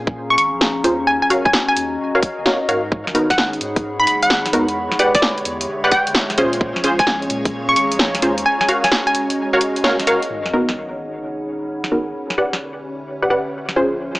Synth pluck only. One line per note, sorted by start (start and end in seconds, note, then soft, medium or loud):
0.30 0.35 C#6 medium
0.38 0.48 C#6 medium
1.07 1.17 G#5 medium
1.22 1.27 G#5 medium
1.45 1.64 G#5 medium
1.69 2.32 G#5 medium
3.30 3.48 F#5 medium
4.00 4.04 B5 medium
4.07 4.17 B5 medium
4.23 4.41 F#5 medium
5.15 5.78 D5 medium
5.92 6.38 G5 medium
7.00 7.18 G#5 medium
7.69 7.74 C#6 medium
7.76 7.86 C#6 medium
8.46 8.55 G#5 medium
8.61 8.66 G#5 medium
8.84 9.02 G#5 medium
9.07 9.70 G#5 medium